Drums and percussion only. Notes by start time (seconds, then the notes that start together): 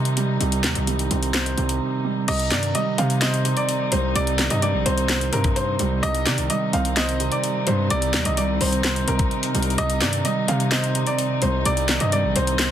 0.05 closed hi-hat
0.17 closed hi-hat
0.41 closed hi-hat
0.52 closed hi-hat
0.64 snare, clap, closed hi-hat
0.75 closed hi-hat
0.87 closed hi-hat
0.99 closed hi-hat
1.11 closed hi-hat, open hi-hat
1.23 closed hi-hat
1.34 snare, clap, closed hi-hat
1.46 closed hi-hat
1.58 closed hi-hat
1.69 closed hi-hat
2.28 closed hi-hat, crash
2.40 closed hi-hat
2.51 snare, clap, closed hi-hat
2.63 closed hi-hat
2.75 closed hi-hat
2.98 closed hi-hat
3.10 closed hi-hat
3.21 snare, clap, closed hi-hat
3.34 closed hi-hat
3.45 closed hi-hat
3.57 closed hi-hat
3.69 closed hi-hat
3.92 closed hi-hat
4.16 closed hi-hat
4.27 closed hi-hat
4.39 snare, clap, closed hi-hat
4.50 closed hi-hat
4.62 closed hi-hat
4.86 closed hi-hat
4.98 closed hi-hat
5.09 snare, clap, closed hi-hat
5.21 closed hi-hat
5.33 closed hi-hat
5.44 kick, closed hi-hat
5.56 closed hi-hat
5.79 closed hi-hat
6.03 closed hi-hat
6.15 closed hi-hat
6.26 snare, clap, closed hi-hat
6.38 closed hi-hat
6.50 closed hi-hat
6.73 closed hi-hat
6.85 closed hi-hat
6.96 snare, clap, closed hi-hat
7.09 closed hi-hat
7.20 closed hi-hat
7.32 closed hi-hat
7.44 closed hi-hat
7.67 closed hi-hat
7.90 closed hi-hat
8.02 closed hi-hat
8.14 snare, clap, closed hi-hat
8.25 closed hi-hat
8.37 closed hi-hat
8.61 open hi-hat
8.73 closed hi-hat
8.84 snare, clap, closed hi-hat
8.96 closed hi-hat
9.08 closed hi-hat
9.19 kick, closed hi-hat
9.31 closed hi-hat
9.43 closed hi-hat
9.55 closed hi-hat
9.63 closed hi-hat
9.70 closed hi-hat
9.78 closed hi-hat
9.90 closed hi-hat
10.01 snare, clap, closed hi-hat
10.13 closed hi-hat
10.25 closed hi-hat
10.48 closed hi-hat
10.60 closed hi-hat
10.71 snare, clap, closed hi-hat
10.84 closed hi-hat
10.95 closed hi-hat
11.07 closed hi-hat
11.19 closed hi-hat
11.42 closed hi-hat
11.65 closed hi-hat
11.77 closed hi-hat
11.89 snare, clap, closed hi-hat
12.00 closed hi-hat
12.12 closed hi-hat
12.36 closed hi-hat
12.47 closed hi-hat
12.59 snare, clap, closed hi-hat